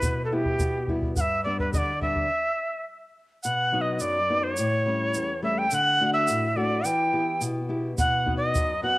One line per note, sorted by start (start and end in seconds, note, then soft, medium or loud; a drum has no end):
0.00 0.58 B2 medium
0.00 0.19 G3 soft
0.00 0.19 B3 soft
0.00 0.20 E4 soft
0.00 0.23 B4 medium
0.00 bombo low medium
0.00 shaker medium
0.25 0.35 A4 medium
0.32 0.77 G3 soft
0.32 0.77 B3 soft
0.32 0.77 E4 soft
0.32 0.89 G4 medium
0.45 bombo low soft
0.59 1.15 B2 medium
0.59 bombo low medium
0.59 shaker medium
0.88 1.11 G3 soft
0.88 1.12 B3 soft
0.88 1.12 E4 medium
0.88 bombo low soft
1.02 bombo low medium
1.16 1.72 G2 medium
1.16 1.22 F#5 medium
1.16 bombo low medium
1.16 shaker medium
1.21 1.43 E5 loud
1.44 1.91 G3 soft
1.44 1.91 B3 soft
1.44 1.91 D4 medium
1.44 1.58 D5 medium
1.59 1.73 B4 medium
1.59 bombo low medium
1.73 2.29 D3 medium
1.73 1.79 D#5 medium
1.73 bombo low medium
1.73 shaker medium
1.78 2.00 D5 medium
2.01 2.24 G3 soft
2.01 2.24 B3 soft
2.01 2.25 D4 soft
2.01 2.83 E5 medium
2.01 bombo low medium
2.16 bombo low medium
3.43 4.00 B2 medium
3.43 3.83 F#5 medium
3.43 shaker medium
3.72 4.18 F#3 soft
3.72 4.18 B3 soft
3.72 4.18 D#4 medium
3.81 3.94 D#5 medium
3.94 4.02 D#5 medium
4.00 4.56 F#2 medium
4.00 4.45 D5 medium
4.00 shaker medium
4.30 4.52 F#3 soft
4.30 4.52 B3 soft
4.30 4.52 D#4 medium
4.43 5.43 C#5 medium
4.57 5.13 A2 medium
4.57 shaker loud
4.86 5.31 G3 soft
4.86 5.32 A3 soft
4.86 5.32 C#4 medium
5.14 5.69 E2 medium
5.14 shaker medium
5.42 5.65 G3 medium
5.42 5.66 A3 soft
5.42 5.66 C#4 medium
5.42 5.60 E5 medium
5.58 5.71 G5 loud
5.71 6.27 D3 medium
5.71 6.13 F#5 loud
5.71 5.75 G5 loud
5.71 shaker loud
6.01 6.46 A3 medium
6.01 6.46 D4 soft
6.01 6.46 F#4 medium
6.13 6.58 E5 medium
6.28 6.84 A2 medium
6.28 shaker medium
6.56 6.79 A3 soft
6.56 6.79 D4 soft
6.56 6.80 F#4 medium
6.56 6.87 D5 medium
6.85 7.40 E3 medium
6.85 7.42 G5 medium
6.85 shaker medium
7.13 7.58 B3 medium
7.13 7.59 E4 soft
7.13 7.59 G4 medium
7.41 7.96 B2 medium
7.41 shaker medium
7.69 7.92 B3 soft
7.69 7.92 E4 soft
7.69 7.93 G4 medium
7.98 8.53 B2 medium
7.98 8.34 F#5 medium
7.98 bombo low medium
7.98 shaker medium
8.26 8.72 B3 soft
8.26 8.72 D#4 soft
8.26 8.72 F#4 medium
8.26 bombo low soft
8.37 8.81 D#5 medium
8.55 8.98 F#2 medium
8.55 bombo low medium
8.55 shaker medium
8.83 8.98 B3 soft
8.83 8.98 D#4 soft
8.83 8.98 F#4 medium
8.83 8.98 F#5 medium